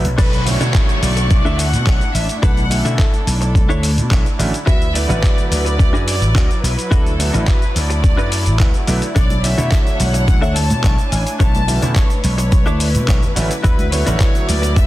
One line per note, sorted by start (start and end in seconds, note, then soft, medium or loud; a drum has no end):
0.00 0.14 F#3 medium
0.00 0.15 E4 medium
0.00 0.14 B4 medium
0.04 0.16 B1 medium
0.04 closed hi-hat medium
0.04 shaker medium
0.18 0.56 B1 loud
0.18 4.63 A3 medium
0.18 0.39 D4 loud
0.18 4.63 D4 medium
0.18 13.60 E4 medium
0.18 0.40 E4 loud
0.18 0.40 A4 loud
0.18 0.45 B4 loud
0.18 0.40 C#5 loud
0.18 2.41 C#6 medium
0.18 kick loud
0.18 closed hi-hat medium
0.18 crash loud
0.18 downlifter medium
0.18 shaker soft
0.33 closed hi-hat soft
0.33 shaker soft
0.46 0.58 D3 medium
0.46 0.58 F#3 medium
0.46 0.59 A3 medium
0.46 0.59 C#4 medium
0.46 0.59 E4 medium
0.46 1.02 C#5 loud
0.46 open hi-hat loud
0.46 shaker medium
0.60 0.72 B2 loud
0.60 1.27 D3 medium
0.60 1.27 F#3 medium
0.60 1.27 A3 medium
0.60 0.89 D4 medium
0.60 0.89 E4 medium
0.60 1.28 E4 loud
0.60 0.89 A4 medium
0.60 1.28 C#5 medium
0.60 0.89 C#5 medium
0.60 closed hi-hat medium
0.60 shaker soft
0.74 kick loud
0.74 clap loud
0.74 closed hi-hat medium
0.74 shaker soft
0.89 closed hi-hat soft
0.89 shaker soft
1.02 1.45 B1 loud
1.02 1.58 D5 loud
1.02 open hi-hat loud
1.02 shaker medium
1.17 muted clean electric guitar stroke loud
1.17 closed hi-hat medium
1.17 shaker soft
1.30 1.43 D3 medium
1.30 1.43 F#3 medium
1.30 1.43 A3 medium
1.30 1.44 C#4 medium
1.30 1.44 E4 medium
1.30 muted clean electric guitar stroke soft
1.30 kick loud
1.30 closed hi-hat medium
1.30 shaker soft
1.45 1.74 D2 medium
1.45 1.66 D4 loud
1.45 1.66 E4 medium
1.45 1.66 A4 loud
1.45 1.66 E5 loud
1.45 shaker soft
1.58 2.14 F#5 loud
1.58 open hi-hat loud
1.58 shaker medium
1.73 1.84 B2 loud
1.73 closed hi-hat medium
1.73 shaker soft
1.86 1.98 B1 loud
1.86 2.01 D4 medium
1.86 2.01 E4 medium
1.86 2.01 A4 medium
1.86 2.01 C#5 medium
1.86 kick loud
1.86 clap loud
1.86 closed hi-hat medium
1.86 shaker soft
2.01 closed hi-hat soft
2.01 shaker soft
2.14 2.26 A1 loud
2.14 2.42 E5 loud
2.14 muted clean electric guitar stroke soft
2.14 open hi-hat loud
2.14 shaker medium
2.29 closed hi-hat medium
2.29 shaker soft
2.42 2.80 B1 loud
2.42 2.64 D4 loud
2.42 2.64 E4 loud
2.42 2.64 A4 loud
2.42 2.64 B4 loud
2.42 2.95 F#5 loud
2.42 kick loud
2.42 closed hi-hat medium
2.42 shaker soft
2.57 closed hi-hat soft
2.57 shaker soft
2.70 2.81 D3 medium
2.70 2.82 F#3 medium
2.70 2.82 A3 medium
2.70 2.82 C#4 medium
2.70 2.82 E4 loud
2.70 open hi-hat loud
2.70 shaker medium
2.85 2.96 B2 loud
2.85 2.97 D3 medium
2.85 2.97 F#3 medium
2.85 2.98 A3 medium
2.85 2.98 C#4 medium
2.85 3.13 D4 medium
2.85 3.13 E4 medium
2.85 2.98 E4 medium
2.85 3.13 A4 medium
2.85 3.13 E5 loud
2.85 closed hi-hat medium
2.85 shaker soft
2.98 4.35 A4 medium
2.98 kick loud
2.98 clap loud
2.98 closed hi-hat medium
2.98 shaker soft
3.14 closed hi-hat soft
3.14 shaker soft
3.27 3.70 B1 loud
3.27 open hi-hat loud
3.27 shaker medium
3.41 muted clean electric guitar stroke loud
3.41 closed hi-hat medium
3.41 shaker soft
3.55 muted clean electric guitar stroke soft
3.55 kick loud
3.55 closed hi-hat medium
3.55 shaker soft
3.69 3.99 D2 medium
3.69 3.90 D4 loud
3.69 3.90 E4 loud
3.69 3.90 A4 loud
3.69 3.90 C#5 loud
3.69 shaker soft
3.83 open hi-hat loud
3.83 shaker medium
3.98 4.08 B2 loud
3.98 closed hi-hat medium
3.98 shaker soft
4.10 4.23 B1 loud
4.10 4.25 D4 loud
4.10 4.25 E4 medium
4.10 4.26 A4 medium
4.10 4.26 C#5 medium
4.10 kick loud
4.10 clap loud
4.10 closed hi-hat medium
4.10 shaker soft
4.26 closed hi-hat soft
4.26 shaker soft
4.39 4.51 A1 loud
4.39 4.52 D3 loud
4.39 4.52 F#3 medium
4.39 4.52 A3 medium
4.39 4.52 C#4 medium
4.39 4.52 E4 loud
4.39 muted clean electric guitar stroke soft
4.39 open hi-hat loud
4.39 shaker medium
4.54 closed hi-hat medium
4.54 shaker soft
4.66 5.05 D2 loud
4.66 9.12 F#3 medium
4.66 4.88 D4 loud
4.66 4.88 E4 loud
4.66 4.88 F#4 loud
4.66 4.88 B4 loud
4.66 6.89 B4 medium
4.66 4.93 E5 loud
4.66 kick loud
4.66 closed hi-hat medium
4.66 shaker soft
4.82 closed hi-hat soft
4.82 shaker soft
4.94 5.06 D3 medium
4.94 5.07 F#3 medium
4.94 5.07 A3 medium
4.94 5.07 B3 medium
4.94 5.08 E4 medium
4.94 5.50 D5 loud
4.94 open hi-hat loud
4.94 shaker medium
5.08 5.20 A1 loud
5.08 5.75 D3 medium
5.08 5.76 F#3 medium
5.08 5.76 A3 medium
5.08 5.76 B3 medium
5.08 5.37 D4 medium
5.08 5.37 E4 medium
5.08 5.76 E4 loud
5.08 5.38 F#4 medium
5.08 5.38 B4 medium
5.08 closed hi-hat soft
5.08 shaker soft
5.23 kick loud
5.23 clap loud
5.23 closed hi-hat medium
5.23 shaker soft
5.38 closed hi-hat soft
5.38 shaker soft
5.51 5.93 D2 loud
5.51 6.03 D5 loud
5.51 open hi-hat loud
5.51 shaker medium
5.65 muted clean electric guitar stroke loud
5.65 closed hi-hat medium
5.65 shaker soft
5.79 5.92 D3 medium
5.79 5.92 F#3 medium
5.79 5.92 A3 medium
5.79 5.92 B3 medium
5.79 5.92 E4 medium
5.79 muted clean electric guitar stroke soft
5.79 kick loud
5.79 closed hi-hat medium
5.79 shaker soft
5.93 6.23 F#2 medium
5.93 6.14 D4 loud
5.93 6.14 E4 medium
5.93 6.14 F#4 loud
5.93 6.15 G#4 loud
5.93 shaker soft
6.07 6.59 D5 loud
6.07 open hi-hat loud
6.07 shaker medium
6.21 6.32 A1 loud
6.21 closed hi-hat soft
6.21 shaker soft
6.35 6.47 D2 medium
6.35 6.50 D4 medium
6.35 6.50 E4 medium
6.35 6.50 F#4 medium
6.35 6.50 B4 medium
6.35 kick loud
6.35 clap loud
6.35 closed hi-hat medium
6.35 shaker soft
6.51 closed hi-hat soft
6.51 shaker soft
6.63 6.75 B1 loud
6.63 6.89 B4 medium
6.63 muted clean electric guitar stroke soft
6.63 open hi-hat loud
6.63 shaker medium
6.79 closed hi-hat medium
6.79 shaker soft
6.91 7.29 D2 loud
6.91 9.14 A3 medium
6.91 7.12 D4 loud
6.91 7.13 E4 loud
6.91 7.13 F#4 loud
6.91 7.48 A4 loud
6.91 7.13 B4 loud
6.91 kick loud
6.91 closed hi-hat medium
6.91 shaker soft
7.06 closed hi-hat soft
7.06 shaker soft
7.19 7.30 D3 medium
7.19 7.30 F#3 medium
7.19 7.30 A3 medium
7.19 7.31 B3 medium
7.19 7.31 E4 medium
7.19 open hi-hat loud
7.19 shaker medium
7.33 7.45 A1 loud
7.33 7.46 D3 medium
7.33 7.46 F#3 medium
7.33 7.46 A3 medium
7.33 7.46 B3 medium
7.33 7.62 D4 medium
7.33 7.62 E4 medium
7.33 7.46 E4 medium
7.33 7.62 F#4 medium
7.33 7.62 B4 medium
7.33 closed hi-hat soft
7.33 shaker soft
7.47 7.73 B4 medium
7.47 kick loud
7.47 clap loud
7.47 closed hi-hat medium
7.47 shaker soft
7.62 closed hi-hat soft
7.62 shaker soft
7.76 8.18 D2 loud
7.76 8.88 D5 loud
7.76 open hi-hat loud
7.76 shaker medium
7.90 muted clean electric guitar stroke loud
7.90 closed hi-hat soft
7.90 shaker soft
8.04 muted clean electric guitar stroke soft
8.04 kick loud
8.04 closed hi-hat medium
8.04 shaker soft
8.17 8.48 F#2 medium
8.17 8.39 D4 loud
8.17 8.31 E4 loud
8.17 8.39 F#4 medium
8.17 8.39 B4 loud
8.17 shaker soft
8.31 8.58 B5 medium
8.31 open hi-hat loud
8.31 shaker medium
8.46 8.57 A1 loud
8.46 closed hi-hat soft
8.46 shaker soft
8.59 8.71 D2 medium
8.59 8.74 D4 medium
8.59 8.74 E4 medium
8.59 8.74 F#4 medium
8.59 8.74 B4 medium
8.59 8.86 F#5 medium
8.59 kick loud
8.59 clap loud
8.59 closed hi-hat medium
8.59 shaker soft
8.74 closed hi-hat soft
8.74 shaker soft
8.87 8.99 B1 loud
8.87 9.00 D3 loud
8.87 9.00 F#3 medium
8.87 9.01 A3 medium
8.87 9.01 B3 medium
8.87 9.01 E4 loud
8.87 9.14 D5 medium
8.87 muted clean electric guitar stroke soft
8.87 open hi-hat loud
8.87 shaker medium
9.02 closed hi-hat medium
9.02 shaker soft
9.15 9.53 B1 loud
9.15 13.60 A3 medium
9.15 9.37 D4 loud
9.15 13.61 D4 medium
9.15 9.37 E4 medium
9.15 9.37 A4 loud
9.15 9.37 C#5 loud
9.15 11.38 C#5 medium
9.15 9.42 D5 loud
9.15 kick loud
9.15 closed hi-hat medium
9.15 shaker medium
9.15 shaker soft
9.30 closed hi-hat soft
9.30 muted conga medium
9.30 high conga medium
9.30 shaker soft
9.43 9.56 D3 medium
9.43 9.56 F#3 medium
9.43 9.56 A3 medium
9.43 9.56 C#4 medium
9.43 9.56 E4 medium
9.43 10.00 E5 loud
9.43 open hi-hat loud
9.43 shaker medium
9.57 9.69 B2 loud
9.57 10.24 D3 medium
9.57 10.24 F#3 medium
9.57 10.25 A3 medium
9.57 9.86 D4 medium
9.57 9.86 E4 medium
9.57 10.25 E4 loud
9.57 9.86 A4 medium
9.57 9.86 C#5 medium
9.57 10.25 C#5 medium
9.57 closed hi-hat soft
9.57 low conga medium
9.57 shaker medium
9.57 shaker soft
9.72 kick loud
9.72 clap loud
9.72 closed hi-hat medium
9.72 shaker soft
9.72 shaker medium
9.87 closed hi-hat soft
9.87 shaker soft
9.99 10.42 B1 loud
9.99 10.56 F#5 loud
9.99 open hi-hat loud
9.99 high conga medium
9.99 shaker medium
10.14 muted clean electric guitar stroke loud
10.14 closed hi-hat medium
10.14 shaker soft
10.14 shaker medium
10.27 10.41 D3 medium
10.27 10.41 F#3 medium
10.27 10.41 A3 medium
10.27 10.41 C#4 medium
10.27 10.41 E4 medium
10.27 muted clean electric guitar stroke soft
10.27 kick loud
10.27 closed hi-hat medium
10.27 shaker medium
10.27 shaker soft
10.41 10.72 D2 medium
10.41 10.63 D4 loud
10.41 10.63 E4 medium
10.41 10.63 A4 loud
10.41 10.63 E5 loud
10.41 shaker soft
10.55 11.11 A5 loud
10.55 open hi-hat loud
10.55 muted conga soft
10.55 shaker medium
10.70 10.81 B2 loud
10.70 closed hi-hat soft
10.70 high conga medium
10.70 shaker medium
10.70 shaker soft
10.83 10.95 B1 medium
10.83 10.98 D4 medium
10.83 10.98 E4 medium
10.83 10.98 A4 medium
10.83 10.99 C#5 loud
10.83 kick loud
10.83 clap loud
10.83 closed hi-hat medium
10.83 shaker medium
10.83 shaker soft
10.98 closed hi-hat soft
10.98 shaker soft
11.11 11.23 A1 loud
11.11 11.40 G#5 loud
11.11 muted clean electric guitar stroke soft
11.11 open hi-hat loud
11.11 shaker medium
11.27 closed hi-hat medium
11.27 shaker medium
11.27 shaker soft
11.39 11.77 B1 loud
11.39 11.61 D4 loud
11.39 11.61 E4 loud
11.39 11.61 A4 loud
11.39 14.87 B4 medium
11.39 11.61 C#5 loud
11.39 11.96 A5 loud
11.39 kick loud
11.39 closed hi-hat medium
11.39 shaker soft
11.39 shaker medium
11.55 closed hi-hat soft
11.55 muted conga medium
11.55 high conga medium
11.55 shaker soft
11.68 11.79 D3 medium
11.68 11.79 F#3 medium
11.68 11.79 A3 medium
11.68 11.79 C#4 medium
11.68 11.79 E4 medium
11.68 open hi-hat loud
11.68 shaker medium
11.82 11.93 B2 loud
11.82 11.95 D3 medium
11.82 11.95 F#3 medium
11.82 11.95 A3 medium
11.82 11.95 C#4 medium
11.82 12.10 D4 medium
11.82 12.10 E4 medium
11.82 11.95 E4 medium
11.82 12.11 A4 medium
11.82 12.11 C#5 medium
11.82 closed hi-hat soft
11.82 low conga medium
11.82 shaker medium
11.82 shaker soft
11.96 13.32 C#5 medium
11.96 kick loud
11.96 clap loud
11.96 closed hi-hat medium
11.96 shaker medium
11.96 shaker soft
12.10 closed hi-hat soft
12.10 shaker soft
12.24 12.67 B1 medium
12.24 open hi-hat loud
12.24 high conga medium
12.24 shaker medium
12.38 muted clean electric guitar stroke loud
12.38 closed hi-hat medium
12.38 shaker soft
12.38 shaker medium
12.52 muted clean electric guitar stroke soft
12.52 kick loud
12.52 closed hi-hat medium
12.52 shaker medium
12.52 shaker soft
12.66 12.96 D2 medium
12.66 12.87 D4 loud
12.66 12.87 E4 loud
12.66 12.87 A4 loud
12.66 12.88 D5 loud
12.66 shaker soft
12.80 open hi-hat loud
12.80 shaker medium
12.94 13.06 B2 loud
12.94 closed hi-hat soft
12.94 high conga medium
12.94 shaker medium
12.94 shaker soft
13.08 13.20 B1 medium
13.08 13.22 D4 loud
13.08 13.23 E4 medium
13.08 13.23 A4 medium
13.08 13.23 C#5 loud
13.08 kick loud
13.08 clap loud
13.08 closed hi-hat medium
13.08 shaker medium
13.08 shaker soft
13.23 closed hi-hat soft
13.23 low conga medium
13.23 shaker soft
13.36 13.48 A1 loud
13.36 13.49 D3 medium
13.36 13.49 F#3 medium
13.36 13.49 A3 medium
13.36 13.49 C#4 loud
13.36 13.49 E4 loud
13.36 muted clean electric guitar stroke soft
13.36 open hi-hat loud
13.36 shaker medium
13.51 closed hi-hat medium
13.51 shaker soft
13.51 shaker medium
13.63 14.02 D2 loud
13.63 14.87 F#3 medium
13.63 13.85 D4 loud
13.63 13.85 E4 loud
13.63 14.87 E4 medium
13.63 13.85 F#4 loud
13.63 13.90 B4 loud
13.63 13.86 B4 loud
13.63 kick loud
13.63 closed hi-hat medium
13.63 shaker medium
13.79 closed hi-hat soft
13.79 muted conga medium
13.79 high conga medium
13.79 shaker soft
13.92 14.04 D3 medium
13.92 14.05 F#3 medium
13.92 14.05 A3 medium
13.92 14.05 B3 medium
13.92 14.05 E4 medium
13.92 14.48 C#5 loud
13.92 open hi-hat loud
13.92 shaker medium
14.06 14.18 A1 loud
14.06 14.73 D3 loud
14.06 14.73 F#3 medium
14.06 14.73 A3 medium
14.06 14.74 B3 medium
14.06 14.35 D4 loud
14.06 14.35 E4 medium
14.06 14.74 E4 loud
14.06 14.35 F#4 medium
14.06 14.35 B4 medium
14.06 closed hi-hat medium
14.06 low conga medium
14.06 shaker soft
14.06 shaker medium
14.20 kick loud
14.20 clap loud
14.20 closed hi-hat medium
14.20 shaker medium
14.20 shaker soft
14.35 closed hi-hat soft
14.35 shaker soft
14.48 14.87 D2 loud
14.48 14.77 D5 loud
14.48 open hi-hat loud
14.48 high conga medium
14.48 shaker medium
14.62 muted clean electric guitar stroke loud
14.62 closed hi-hat medium
14.62 shaker medium
14.62 shaker soft
14.76 14.87 D3 medium
14.76 14.87 F#3 medium
14.76 14.87 A3 medium
14.76 14.87 B3 medium
14.76 14.87 E4 medium
14.76 14.87 E5 loud
14.76 muted clean electric guitar stroke soft
14.76 kick loud
14.76 closed hi-hat medium
14.76 shaker soft
14.76 shaker medium